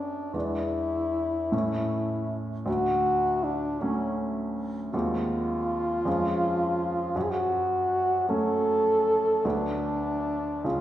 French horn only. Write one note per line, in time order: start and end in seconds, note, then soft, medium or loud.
0.00 0.35 D4 soft
0.36 2.36 E4 medium
2.66 3.45 F#4 medium
3.44 3.82 D4 medium
3.81 4.18 C#4 soft
4.93 7.17 F4 medium
7.15 7.24 F#4 medium
7.23 7.32 G#4 soft
7.30 8.29 F#4 medium
8.29 9.48 A4 medium
9.46 10.67 D4 medium
10.65 10.81 F4 medium